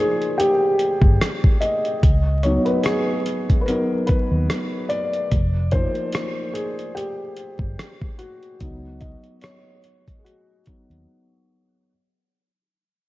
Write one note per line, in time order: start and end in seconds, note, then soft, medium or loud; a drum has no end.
0.00 2.00 F3 soft
0.00 2.00 A#3 soft
0.00 2.00 D#4 medium
0.00 0.40 G#4 medium
0.00 2.05 C5 medium
0.00 2.05 D5 medium
0.22 closed hi-hat soft
0.38 1.65 G4 medium
0.38 closed hi-hat medium
0.79 closed hi-hat medium
1.02 1.17 G1 medium
1.02 kick loud
1.21 cross-stick loud
1.21 closed hi-hat medium
1.44 kick medium
1.61 2.46 D#5 medium
1.61 closed hi-hat medium
1.85 closed hi-hat soft
2.03 2.57 C#2 loud
2.03 kick loud
2.03 closed hi-hat medium
2.43 3.67 F#3 soft
2.43 3.67 B3 soft
2.43 3.68 D#4 soft
2.43 2.67 C#5 medium
2.43 closed hi-hat medium
2.65 2.83 B4 medium
2.65 closed hi-hat soft
2.83 3.56 G#4 medium
2.83 cross-stick loud
2.83 closed hi-hat medium
3.26 closed hi-hat medium
3.50 kick medium
3.50 closed hi-hat soft
3.61 3.67 B4 medium
3.66 4.05 F#3 soft
3.66 4.05 B3 soft
3.66 4.05 D#4 medium
3.66 4.09 A#4 loud
3.66 closed hi-hat medium
4.07 4.92 B4 medium
4.07 kick medium
4.07 closed hi-hat medium
4.32 4.47 D#2 medium
4.50 cross-stick loud
4.50 closed hi-hat medium
4.89 5.75 D5 loud
4.89 closed hi-hat medium
5.13 closed hi-hat soft
5.32 5.86 F1 loud
5.32 kick loud
5.32 closed hi-hat medium
5.71 8.57 F3 soft
5.71 8.57 A#3 soft
5.71 8.58 D#4 soft
5.71 6.51 C5 loud
5.71 kick medium
5.71 closed hi-hat medium
5.95 closed hi-hat soft
6.12 cross-stick loud
6.12 closed hi-hat medium
6.53 6.92 G#4 medium
6.53 closed hi-hat medium
6.79 closed hi-hat soft
6.95 8.23 G4 medium
6.95 closed hi-hat medium
7.37 closed hi-hat medium
7.59 7.75 G1 medium
7.59 kick loud
7.79 cross-stick loud
7.79 closed hi-hat medium
8.02 kick medium
8.18 9.04 F#4 medium
8.18 closed hi-hat medium
8.43 closed hi-hat soft
8.60 9.15 C#2 loud
8.60 9.80 F#3 medium
8.60 9.81 B3 soft
8.60 9.81 D#4 medium
8.60 kick loud
8.60 closed hi-hat medium
9.01 9.10 D#5 medium
9.01 kick medium
9.01 closed hi-hat medium
9.24 closed hi-hat soft
9.41 10.21 C#5 medium
9.41 cross-stick loud
9.41 closed hi-hat medium
9.84 closed hi-hat medium
10.08 kick medium
10.08 closed hi-hat soft
10.19 10.25 G#4 soft
10.24 11.03 F#4 medium
10.24 closed hi-hat medium
10.66 11.04 F#3 soft
10.66 11.04 B3 soft
10.66 11.04 D#4 soft
10.66 kick medium
10.66 closed hi-hat medium
10.90 11.05 D#2 medium
10.90 closed hi-hat soft